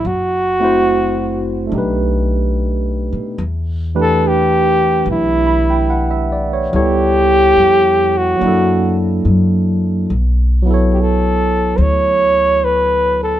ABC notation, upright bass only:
X:1
M:4/4
L:1/8
Q:"Swing" 1/4=72
K:Bm
V:1 name="Upright bass" clef=bass
F,,,4 B,,,3 B,, | E,,4 B,,,4 | C,,2 =F,,2 ^F,,2 F,,2 | B,,,4 D,,4 |]